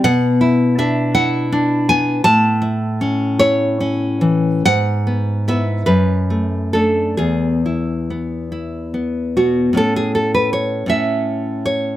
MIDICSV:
0, 0, Header, 1, 2, 480
1, 0, Start_track
1, 0, Key_signature, 3, "major"
1, 0, Tempo, 729927
1, 32, Time_signature, 6, 3, 24, 8
1, 1473, Tempo, 772201
1, 2433, Tempo, 867052
1, 2913, Tempo, 826446
1, 3873, Tempo, 887574
1, 4833, Tempo, 847458
1, 5793, Tempo, 749064
1, 7198, End_track
2, 0, Start_track
2, 0, Title_t, "Nylon-string guitar"
2, 0, Program_c, 0, 24
2, 27, Note_on_c, 0, 78, 127
2, 31, Note_on_c, 0, 47, 95
2, 269, Note_on_c, 0, 64, 72
2, 488, Note_off_c, 0, 78, 0
2, 516, Note_on_c, 0, 62, 69
2, 518, Note_on_c, 0, 76, 94
2, 746, Note_off_c, 0, 64, 0
2, 746, Note_off_c, 0, 76, 0
2, 753, Note_on_c, 0, 64, 73
2, 753, Note_on_c, 0, 78, 110
2, 994, Note_off_c, 0, 62, 0
2, 1002, Note_on_c, 0, 62, 67
2, 1213, Note_off_c, 0, 78, 0
2, 1243, Note_on_c, 0, 80, 113
2, 1251, Note_on_c, 0, 59, 70
2, 1447, Note_off_c, 0, 47, 0
2, 1470, Note_off_c, 0, 80, 0
2, 1474, Note_on_c, 0, 81, 125
2, 1475, Note_off_c, 0, 62, 0
2, 1475, Note_off_c, 0, 64, 0
2, 1477, Note_on_c, 0, 45, 91
2, 1483, Note_off_c, 0, 59, 0
2, 1707, Note_on_c, 0, 64, 65
2, 1952, Note_on_c, 0, 61, 64
2, 2160, Note_off_c, 0, 81, 0
2, 2189, Note_off_c, 0, 64, 0
2, 2191, Note_on_c, 0, 73, 113
2, 2196, Note_on_c, 0, 64, 66
2, 2438, Note_off_c, 0, 61, 0
2, 2444, Note_on_c, 0, 61, 63
2, 2669, Note_on_c, 0, 52, 62
2, 2893, Note_off_c, 0, 45, 0
2, 2894, Note_off_c, 0, 73, 0
2, 2913, Note_off_c, 0, 52, 0
2, 2915, Note_on_c, 0, 78, 122
2, 2918, Note_off_c, 0, 64, 0
2, 2918, Note_on_c, 0, 44, 78
2, 2919, Note_off_c, 0, 61, 0
2, 3155, Note_on_c, 0, 59, 56
2, 3375, Note_off_c, 0, 78, 0
2, 3390, Note_off_c, 0, 59, 0
2, 3393, Note_on_c, 0, 64, 61
2, 3396, Note_on_c, 0, 76, 77
2, 3397, Note_on_c, 0, 59, 54
2, 3606, Note_off_c, 0, 64, 0
2, 3608, Note_off_c, 0, 59, 0
2, 3610, Note_off_c, 0, 44, 0
2, 3615, Note_on_c, 0, 71, 90
2, 3619, Note_on_c, 0, 42, 67
2, 3621, Note_off_c, 0, 76, 0
2, 3872, Note_on_c, 0, 57, 47
2, 4083, Note_off_c, 0, 71, 0
2, 4103, Note_off_c, 0, 57, 0
2, 4104, Note_on_c, 0, 69, 73
2, 4109, Note_on_c, 0, 57, 50
2, 4113, Note_on_c, 0, 62, 57
2, 4322, Note_off_c, 0, 42, 0
2, 4328, Note_off_c, 0, 57, 0
2, 4328, Note_off_c, 0, 62, 0
2, 4337, Note_off_c, 0, 69, 0
2, 4343, Note_on_c, 0, 68, 74
2, 4349, Note_on_c, 0, 40, 65
2, 4604, Note_on_c, 0, 64, 49
2, 4846, Note_on_c, 0, 59, 46
2, 5075, Note_off_c, 0, 64, 0
2, 5081, Note_on_c, 0, 64, 48
2, 5313, Note_off_c, 0, 59, 0
2, 5320, Note_on_c, 0, 59, 46
2, 5540, Note_off_c, 0, 68, 0
2, 5562, Note_on_c, 0, 66, 65
2, 5565, Note_on_c, 0, 47, 48
2, 5765, Note_off_c, 0, 47, 0
2, 5768, Note_on_c, 0, 45, 61
2, 5772, Note_off_c, 0, 40, 0
2, 5774, Note_off_c, 0, 59, 0
2, 5776, Note_on_c, 0, 61, 51
2, 5777, Note_off_c, 0, 64, 0
2, 5783, Note_on_c, 0, 64, 51
2, 5784, Note_off_c, 0, 66, 0
2, 5792, Note_on_c, 0, 69, 93
2, 5912, Note_off_c, 0, 69, 0
2, 5914, Note_on_c, 0, 68, 81
2, 6030, Note_off_c, 0, 68, 0
2, 6033, Note_on_c, 0, 69, 79
2, 6156, Note_off_c, 0, 69, 0
2, 6158, Note_on_c, 0, 71, 79
2, 6274, Note_off_c, 0, 71, 0
2, 6276, Note_on_c, 0, 73, 81
2, 6482, Note_off_c, 0, 45, 0
2, 6490, Note_on_c, 0, 45, 58
2, 6492, Note_off_c, 0, 61, 0
2, 6496, Note_off_c, 0, 64, 0
2, 6500, Note_on_c, 0, 61, 44
2, 6509, Note_off_c, 0, 73, 0
2, 6511, Note_on_c, 0, 64, 50
2, 6511, Note_on_c, 0, 76, 83
2, 6976, Note_off_c, 0, 76, 0
2, 6998, Note_on_c, 0, 73, 84
2, 7194, Note_off_c, 0, 45, 0
2, 7198, Note_off_c, 0, 61, 0
2, 7198, Note_off_c, 0, 64, 0
2, 7198, Note_off_c, 0, 73, 0
2, 7198, End_track
0, 0, End_of_file